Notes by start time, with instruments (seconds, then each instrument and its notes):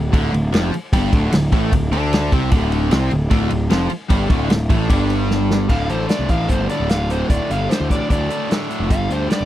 Already playing: picked electric bass D1
0.12 picked electric bass D1, overdriven electric guitar D2 D3, kick, ride
0.32 picked electric bass D1, overdriven electric guitar D2, ride
0.52 picked electric bass F1, overdriven electric guitar F2 F3, snare, ride
0.73 muted picked electric bass stroke, muted overdriven electric guitar stroke, ride
0.93 picked electric bass G1, overdriven electric guitar G2 G3, kick, ride
1.13 picked electric bass D1, overdriven electric guitar D2 D3, kick, ride
1.32 picked electric bass D1, overdriven electric guitar D2, snare, ride
1.52 picked electric bass A1, overdriven electric guitar A2 A3, kick, ride
1.72 picked electric bass D1, overdriven electric guitar D2, kick, ride
1.92 picked electric bass D2, overdriven electric guitar D3 D4, ride
2.13 snare, ride
2.32 picked electric bass C2, overdriven electric guitar C3 C4, kick, ride
2.51 picked electric bass D1, overdriven electric guitar D2 D3, kick, ride
2.72 ride
2.91 picked electric bass C2, overdriven electric guitar C3 C4, snare, ride
3.11 picked electric bass D1, overdriven electric guitar D2, ride
3.30 picked electric bass D1, overdriven electric guitar D2 D3, kick, ride
3.50 picked electric bass D1, overdriven electric guitar D2, ride
3.70 picked electric bass F1, overdriven electric guitar F2 F3, snare, ride
3.90 muted overdriven electric guitar stroke, muted picked electric bass stroke, ride
4.09 picked electric bass G1, overdriven electric guitar G2 G3, kick, ride
4.29 picked electric bass D1, overdriven electric guitar D2 D3, kick, ride
4.49 picked electric bass D1, overdriven electric guitar D2, snare, ride
4.70 picked electric bass A1, overdriven electric guitar A2 A3, kick, ride
4.89 picked electric bass G1, overdriven electric guitar G2 G3, kick, ride
5.10 ride
5.31 snare
5.51 snare
5.69 picked electric bass D1, overdriven electric guitar D2 A2 D3, electric slide guitar F5, kick, crash
5.89 picked electric bass A1, overdriven electric guitar D2 A2 D3, electric slide guitar C5, closed hi-hat
6.09 overdriven electric guitar D2 A2 D3, electric slide guitar D5, snare, closed hi-hat
6.19 picked electric bass C2
6.29 picked electric bass A1, overdriven electric guitar D2 A2 D3, electric slide guitar F5, kick, closed hi-hat
6.48 picked electric bass G1, overdriven electric guitar D2 A2 D3, electric slide guitar C5, kick, closed hi-hat
6.69 overdriven electric guitar D2 A2 D3, electric slide guitar D5, closed hi-hat
6.80 picked electric bass D1
6.89 overdriven electric guitar D2 A2 D3, electric slide guitar F5, snare, closed hi-hat
7.10 overdriven electric guitar D2 A2 D3, electric slide guitar C5, closed hi-hat
7.29 picked electric bass D1, overdriven electric guitar D2 A2 D3, electric slide guitar D5, kick, closed hi-hat
7.50 picked electric bass G1, overdriven electric guitar D2 A2 D3, electric slide guitar F5, closed hi-hat
7.69 overdriven electric guitar D2 A2 D3, electric slide guitar C5, snare, closed hi-hat
7.81 picked electric bass D2
7.90 picked electric bass A1, overdriven electric guitar D2 A2 D3, electric slide guitar D5, kick, closed hi-hat
8.10 picked electric bass D2, overdriven electric guitar D2 A2 D3, electric slide guitar D5, kick, closed hi-hat
8.30 overdriven electric guitar D2 A2 D3, closed hi-hat
8.50 overdriven electric guitar D2 A2 D3, snare, closed hi-hat
8.62 snare
8.69 overdriven electric guitar D2 A2 D3, closed hi-hat
8.80 picked electric bass F1
8.90 picked electric bass G1, overdriven electric guitar G2 D3 G3, electric slide guitar F5, kick, closed hi-hat
9.09 picked electric bass D2, overdriven electric guitar G2 D3 G3, electric slide guitar C5, closed hi-hat
9.29 overdriven electric guitar G2 D3 G3, electric slide guitar D5, snare, closed hi-hat
9.40 picked electric bass E1